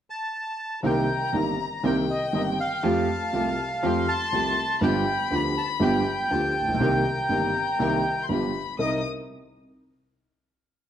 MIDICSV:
0, 0, Header, 1, 5, 480
1, 0, Start_track
1, 0, Tempo, 497100
1, 803, Time_signature, 4, 2, 24, 8
1, 10522, End_track
2, 0, Start_track
2, 0, Title_t, "Violin"
2, 0, Program_c, 0, 40
2, 804, Note_on_c, 0, 82, 80
2, 1784, Note_on_c, 0, 79, 76
2, 1799, Note_off_c, 0, 82, 0
2, 2739, Note_on_c, 0, 81, 81
2, 2754, Note_off_c, 0, 79, 0
2, 3708, Note_on_c, 0, 84, 86
2, 3722, Note_off_c, 0, 81, 0
2, 4651, Note_off_c, 0, 84, 0
2, 4657, Note_on_c, 0, 83, 94
2, 6101, Note_on_c, 0, 81, 70
2, 6115, Note_off_c, 0, 83, 0
2, 6574, Note_off_c, 0, 81, 0
2, 6580, Note_on_c, 0, 82, 82
2, 7946, Note_on_c, 0, 84, 53
2, 7961, Note_off_c, 0, 82, 0
2, 8009, Note_on_c, 0, 83, 64
2, 8023, Note_off_c, 0, 84, 0
2, 8489, Note_off_c, 0, 83, 0
2, 8498, Note_on_c, 0, 87, 54
2, 8717, Note_off_c, 0, 87, 0
2, 10522, End_track
3, 0, Start_track
3, 0, Title_t, "Bandoneon"
3, 0, Program_c, 1, 23
3, 97, Note_on_c, 1, 81, 77
3, 773, Note_off_c, 1, 81, 0
3, 830, Note_on_c, 1, 79, 75
3, 1307, Note_on_c, 1, 82, 75
3, 1314, Note_off_c, 1, 79, 0
3, 1794, Note_off_c, 1, 82, 0
3, 1796, Note_on_c, 1, 79, 74
3, 1898, Note_off_c, 1, 79, 0
3, 2030, Note_on_c, 1, 75, 69
3, 2245, Note_off_c, 1, 75, 0
3, 2265, Note_on_c, 1, 75, 65
3, 2340, Note_off_c, 1, 75, 0
3, 2426, Note_on_c, 1, 79, 53
3, 2493, Note_off_c, 1, 79, 0
3, 2511, Note_on_c, 1, 77, 81
3, 3943, Note_on_c, 1, 81, 99
3, 3988, Note_off_c, 1, 77, 0
3, 4664, Note_on_c, 1, 79, 86
3, 4680, Note_off_c, 1, 81, 0
3, 5144, Note_on_c, 1, 83, 87
3, 5153, Note_off_c, 1, 79, 0
3, 5249, Note_off_c, 1, 83, 0
3, 5383, Note_on_c, 1, 81, 78
3, 5488, Note_off_c, 1, 81, 0
3, 5618, Note_on_c, 1, 79, 91
3, 7971, Note_off_c, 1, 79, 0
3, 8499, Note_on_c, 1, 75, 70
3, 8717, Note_off_c, 1, 75, 0
3, 10522, End_track
4, 0, Start_track
4, 0, Title_t, "String section"
4, 0, Program_c, 2, 48
4, 807, Note_on_c, 2, 60, 66
4, 808, Note_on_c, 2, 63, 60
4, 812, Note_on_c, 2, 70, 69
4, 1008, Note_off_c, 2, 60, 0
4, 1008, Note_off_c, 2, 63, 0
4, 1010, Note_off_c, 2, 70, 0
4, 1292, Note_on_c, 2, 60, 41
4, 1292, Note_on_c, 2, 63, 39
4, 1293, Note_on_c, 2, 70, 43
4, 1492, Note_off_c, 2, 60, 0
4, 1492, Note_off_c, 2, 63, 0
4, 1493, Note_off_c, 2, 70, 0
4, 1769, Note_on_c, 2, 60, 59
4, 1773, Note_on_c, 2, 63, 56
4, 1773, Note_on_c, 2, 70, 70
4, 1972, Note_off_c, 2, 60, 0
4, 1973, Note_off_c, 2, 63, 0
4, 1974, Note_off_c, 2, 70, 0
4, 2254, Note_on_c, 2, 63, 40
4, 2255, Note_on_c, 2, 60, 42
4, 2259, Note_on_c, 2, 70, 42
4, 2455, Note_off_c, 2, 60, 0
4, 2455, Note_off_c, 2, 63, 0
4, 2457, Note_off_c, 2, 70, 0
4, 2730, Note_on_c, 2, 57, 69
4, 2731, Note_on_c, 2, 65, 60
4, 2732, Note_on_c, 2, 67, 75
4, 2934, Note_off_c, 2, 57, 0
4, 2935, Note_off_c, 2, 65, 0
4, 2935, Note_off_c, 2, 67, 0
4, 3214, Note_on_c, 2, 57, 41
4, 3217, Note_on_c, 2, 65, 39
4, 3219, Note_on_c, 2, 67, 48
4, 3416, Note_off_c, 2, 57, 0
4, 3418, Note_off_c, 2, 65, 0
4, 3419, Note_off_c, 2, 67, 0
4, 3696, Note_on_c, 2, 57, 61
4, 3699, Note_on_c, 2, 65, 54
4, 3702, Note_on_c, 2, 67, 73
4, 3897, Note_off_c, 2, 57, 0
4, 3899, Note_off_c, 2, 65, 0
4, 3900, Note_off_c, 2, 67, 0
4, 4177, Note_on_c, 2, 57, 44
4, 4179, Note_on_c, 2, 65, 39
4, 4180, Note_on_c, 2, 67, 48
4, 4378, Note_off_c, 2, 57, 0
4, 4379, Note_off_c, 2, 65, 0
4, 4379, Note_off_c, 2, 67, 0
4, 4652, Note_on_c, 2, 65, 65
4, 4653, Note_on_c, 2, 59, 72
4, 4657, Note_on_c, 2, 67, 76
4, 4854, Note_off_c, 2, 65, 0
4, 4855, Note_off_c, 2, 59, 0
4, 4857, Note_off_c, 2, 67, 0
4, 5135, Note_on_c, 2, 59, 43
4, 5136, Note_on_c, 2, 65, 41
4, 5137, Note_on_c, 2, 67, 47
4, 5336, Note_off_c, 2, 59, 0
4, 5336, Note_off_c, 2, 65, 0
4, 5337, Note_off_c, 2, 67, 0
4, 5616, Note_on_c, 2, 59, 70
4, 5620, Note_on_c, 2, 65, 63
4, 5620, Note_on_c, 2, 67, 79
4, 5815, Note_off_c, 2, 59, 0
4, 5817, Note_off_c, 2, 65, 0
4, 5817, Note_off_c, 2, 67, 0
4, 6092, Note_on_c, 2, 59, 42
4, 6093, Note_on_c, 2, 65, 39
4, 6093, Note_on_c, 2, 67, 49
4, 6292, Note_off_c, 2, 59, 0
4, 6292, Note_off_c, 2, 65, 0
4, 6293, Note_off_c, 2, 67, 0
4, 6564, Note_on_c, 2, 60, 68
4, 6569, Note_on_c, 2, 63, 67
4, 6570, Note_on_c, 2, 70, 69
4, 6767, Note_off_c, 2, 60, 0
4, 6769, Note_off_c, 2, 63, 0
4, 6770, Note_off_c, 2, 70, 0
4, 7048, Note_on_c, 2, 60, 43
4, 7048, Note_on_c, 2, 63, 40
4, 7050, Note_on_c, 2, 70, 47
4, 7248, Note_off_c, 2, 60, 0
4, 7248, Note_off_c, 2, 63, 0
4, 7249, Note_off_c, 2, 70, 0
4, 7528, Note_on_c, 2, 60, 66
4, 7529, Note_on_c, 2, 63, 59
4, 7532, Note_on_c, 2, 70, 75
4, 7729, Note_off_c, 2, 60, 0
4, 7729, Note_off_c, 2, 63, 0
4, 7731, Note_off_c, 2, 70, 0
4, 8012, Note_on_c, 2, 59, 38
4, 8014, Note_on_c, 2, 65, 38
4, 8017, Note_on_c, 2, 67, 48
4, 8212, Note_off_c, 2, 59, 0
4, 8213, Note_off_c, 2, 65, 0
4, 8215, Note_off_c, 2, 67, 0
4, 8490, Note_on_c, 2, 63, 46
4, 8490, Note_on_c, 2, 70, 52
4, 8492, Note_on_c, 2, 60, 48
4, 8690, Note_off_c, 2, 63, 0
4, 8690, Note_off_c, 2, 70, 0
4, 8691, Note_off_c, 2, 60, 0
4, 10522, End_track
5, 0, Start_track
5, 0, Title_t, "Grand piano"
5, 0, Program_c, 3, 0
5, 800, Note_on_c, 3, 36, 72
5, 801, Note_on_c, 3, 51, 67
5, 801, Note_on_c, 3, 58, 54
5, 802, Note_on_c, 3, 48, 78
5, 805, Note_on_c, 3, 60, 55
5, 809, Note_on_c, 3, 67, 69
5, 1005, Note_off_c, 3, 36, 0
5, 1005, Note_off_c, 3, 51, 0
5, 1005, Note_off_c, 3, 58, 0
5, 1006, Note_off_c, 3, 48, 0
5, 1007, Note_off_c, 3, 60, 0
5, 1009, Note_off_c, 3, 67, 0
5, 1280, Note_on_c, 3, 58, 35
5, 1281, Note_on_c, 3, 43, 44
5, 1282, Note_on_c, 3, 51, 40
5, 1283, Note_on_c, 3, 67, 45
5, 1284, Note_on_c, 3, 31, 45
5, 1285, Note_on_c, 3, 60, 37
5, 1486, Note_off_c, 3, 58, 0
5, 1487, Note_off_c, 3, 43, 0
5, 1487, Note_off_c, 3, 51, 0
5, 1488, Note_off_c, 3, 31, 0
5, 1488, Note_off_c, 3, 60, 0
5, 1488, Note_off_c, 3, 67, 0
5, 1769, Note_on_c, 3, 51, 61
5, 1771, Note_on_c, 3, 36, 76
5, 1771, Note_on_c, 3, 58, 56
5, 1773, Note_on_c, 3, 60, 57
5, 1774, Note_on_c, 3, 48, 69
5, 1775, Note_on_c, 3, 67, 71
5, 1972, Note_off_c, 3, 51, 0
5, 1973, Note_off_c, 3, 36, 0
5, 1973, Note_off_c, 3, 58, 0
5, 1974, Note_off_c, 3, 48, 0
5, 1974, Note_off_c, 3, 60, 0
5, 1975, Note_off_c, 3, 67, 0
5, 2245, Note_on_c, 3, 51, 40
5, 2249, Note_on_c, 3, 31, 45
5, 2249, Note_on_c, 3, 43, 45
5, 2249, Note_on_c, 3, 60, 35
5, 2250, Note_on_c, 3, 58, 38
5, 2251, Note_on_c, 3, 67, 48
5, 2450, Note_off_c, 3, 51, 0
5, 2452, Note_off_c, 3, 60, 0
5, 2453, Note_off_c, 3, 31, 0
5, 2453, Note_off_c, 3, 43, 0
5, 2453, Note_off_c, 3, 58, 0
5, 2453, Note_off_c, 3, 67, 0
5, 2733, Note_on_c, 3, 53, 77
5, 2734, Note_on_c, 3, 41, 80
5, 2737, Note_on_c, 3, 60, 57
5, 2737, Note_on_c, 3, 67, 74
5, 2738, Note_on_c, 3, 57, 62
5, 2936, Note_off_c, 3, 41, 0
5, 2937, Note_off_c, 3, 53, 0
5, 2938, Note_off_c, 3, 57, 0
5, 2938, Note_off_c, 3, 60, 0
5, 2938, Note_off_c, 3, 67, 0
5, 3212, Note_on_c, 3, 48, 51
5, 3212, Note_on_c, 3, 53, 41
5, 3212, Note_on_c, 3, 57, 36
5, 3214, Note_on_c, 3, 60, 37
5, 3217, Note_on_c, 3, 36, 51
5, 3220, Note_on_c, 3, 67, 46
5, 3415, Note_off_c, 3, 48, 0
5, 3415, Note_off_c, 3, 53, 0
5, 3416, Note_off_c, 3, 57, 0
5, 3416, Note_off_c, 3, 60, 0
5, 3418, Note_off_c, 3, 36, 0
5, 3419, Note_off_c, 3, 67, 0
5, 3694, Note_on_c, 3, 57, 60
5, 3695, Note_on_c, 3, 53, 79
5, 3697, Note_on_c, 3, 60, 62
5, 3698, Note_on_c, 3, 41, 77
5, 3700, Note_on_c, 3, 67, 72
5, 3896, Note_off_c, 3, 57, 0
5, 3898, Note_off_c, 3, 41, 0
5, 3898, Note_off_c, 3, 53, 0
5, 3898, Note_off_c, 3, 60, 0
5, 3899, Note_off_c, 3, 67, 0
5, 4173, Note_on_c, 3, 57, 39
5, 4174, Note_on_c, 3, 53, 41
5, 4175, Note_on_c, 3, 36, 52
5, 4176, Note_on_c, 3, 60, 37
5, 4178, Note_on_c, 3, 48, 48
5, 4180, Note_on_c, 3, 67, 45
5, 4375, Note_off_c, 3, 57, 0
5, 4376, Note_off_c, 3, 53, 0
5, 4377, Note_off_c, 3, 36, 0
5, 4377, Note_off_c, 3, 60, 0
5, 4378, Note_off_c, 3, 48, 0
5, 4379, Note_off_c, 3, 67, 0
5, 4645, Note_on_c, 3, 53, 68
5, 4645, Note_on_c, 3, 62, 60
5, 4647, Note_on_c, 3, 31, 80
5, 4647, Note_on_c, 3, 59, 62
5, 4650, Note_on_c, 3, 67, 71
5, 4651, Note_on_c, 3, 43, 77
5, 4851, Note_off_c, 3, 53, 0
5, 4851, Note_off_c, 3, 62, 0
5, 4852, Note_off_c, 3, 31, 0
5, 4852, Note_off_c, 3, 59, 0
5, 4853, Note_off_c, 3, 67, 0
5, 4854, Note_off_c, 3, 43, 0
5, 5124, Note_on_c, 3, 50, 50
5, 5124, Note_on_c, 3, 53, 44
5, 5124, Note_on_c, 3, 59, 37
5, 5125, Note_on_c, 3, 38, 50
5, 5127, Note_on_c, 3, 62, 37
5, 5128, Note_on_c, 3, 67, 49
5, 5330, Note_off_c, 3, 53, 0
5, 5330, Note_off_c, 3, 59, 0
5, 5331, Note_off_c, 3, 38, 0
5, 5331, Note_off_c, 3, 50, 0
5, 5332, Note_off_c, 3, 62, 0
5, 5333, Note_off_c, 3, 67, 0
5, 5594, Note_on_c, 3, 53, 61
5, 5597, Note_on_c, 3, 62, 61
5, 5598, Note_on_c, 3, 31, 77
5, 5599, Note_on_c, 3, 59, 63
5, 5601, Note_on_c, 3, 43, 77
5, 5602, Note_on_c, 3, 67, 71
5, 5804, Note_off_c, 3, 53, 0
5, 5806, Note_off_c, 3, 31, 0
5, 5806, Note_off_c, 3, 62, 0
5, 5807, Note_off_c, 3, 59, 0
5, 5808, Note_off_c, 3, 43, 0
5, 5808, Note_off_c, 3, 67, 0
5, 6087, Note_on_c, 3, 53, 42
5, 6089, Note_on_c, 3, 50, 48
5, 6089, Note_on_c, 3, 59, 40
5, 6092, Note_on_c, 3, 38, 44
5, 6095, Note_on_c, 3, 62, 37
5, 6096, Note_on_c, 3, 67, 45
5, 6289, Note_off_c, 3, 53, 0
5, 6291, Note_off_c, 3, 50, 0
5, 6291, Note_off_c, 3, 59, 0
5, 6292, Note_off_c, 3, 38, 0
5, 6293, Note_off_c, 3, 62, 0
5, 6294, Note_off_c, 3, 67, 0
5, 6380, Note_on_c, 3, 33, 41
5, 6444, Note_off_c, 3, 33, 0
5, 6451, Note_on_c, 3, 34, 57
5, 6509, Note_on_c, 3, 35, 63
5, 6510, Note_off_c, 3, 34, 0
5, 6561, Note_on_c, 3, 51, 65
5, 6564, Note_on_c, 3, 58, 59
5, 6565, Note_on_c, 3, 48, 80
5, 6566, Note_on_c, 3, 36, 77
5, 6566, Note_on_c, 3, 60, 61
5, 6567, Note_on_c, 3, 67, 74
5, 6568, Note_off_c, 3, 35, 0
5, 6766, Note_off_c, 3, 51, 0
5, 6767, Note_off_c, 3, 58, 0
5, 6768, Note_off_c, 3, 36, 0
5, 6768, Note_off_c, 3, 48, 0
5, 6768, Note_off_c, 3, 60, 0
5, 6769, Note_off_c, 3, 67, 0
5, 7038, Note_on_c, 3, 51, 40
5, 7039, Note_on_c, 3, 31, 48
5, 7039, Note_on_c, 3, 58, 38
5, 7041, Note_on_c, 3, 43, 50
5, 7043, Note_on_c, 3, 60, 37
5, 7046, Note_on_c, 3, 67, 45
5, 7244, Note_off_c, 3, 31, 0
5, 7244, Note_off_c, 3, 51, 0
5, 7244, Note_off_c, 3, 58, 0
5, 7245, Note_off_c, 3, 43, 0
5, 7246, Note_off_c, 3, 60, 0
5, 7247, Note_off_c, 3, 67, 0
5, 7521, Note_on_c, 3, 51, 60
5, 7524, Note_on_c, 3, 58, 58
5, 7526, Note_on_c, 3, 36, 69
5, 7527, Note_on_c, 3, 60, 56
5, 7530, Note_on_c, 3, 48, 72
5, 7530, Note_on_c, 3, 67, 67
5, 7726, Note_off_c, 3, 51, 0
5, 7727, Note_off_c, 3, 58, 0
5, 7728, Note_off_c, 3, 36, 0
5, 7728, Note_off_c, 3, 60, 0
5, 7730, Note_off_c, 3, 48, 0
5, 7730, Note_off_c, 3, 67, 0
5, 8001, Note_on_c, 3, 53, 43
5, 8004, Note_on_c, 3, 43, 49
5, 8004, Note_on_c, 3, 59, 39
5, 8005, Note_on_c, 3, 62, 36
5, 8006, Note_on_c, 3, 31, 43
5, 8008, Note_on_c, 3, 67, 47
5, 8207, Note_off_c, 3, 53, 0
5, 8208, Note_off_c, 3, 43, 0
5, 8208, Note_off_c, 3, 59, 0
5, 8209, Note_off_c, 3, 31, 0
5, 8209, Note_off_c, 3, 62, 0
5, 8210, Note_off_c, 3, 67, 0
5, 8484, Note_on_c, 3, 60, 44
5, 8485, Note_on_c, 3, 36, 49
5, 8487, Note_on_c, 3, 70, 53
5, 8489, Note_on_c, 3, 63, 46
5, 8687, Note_off_c, 3, 36, 0
5, 8687, Note_off_c, 3, 60, 0
5, 8688, Note_off_c, 3, 70, 0
5, 8689, Note_off_c, 3, 63, 0
5, 10522, End_track
0, 0, End_of_file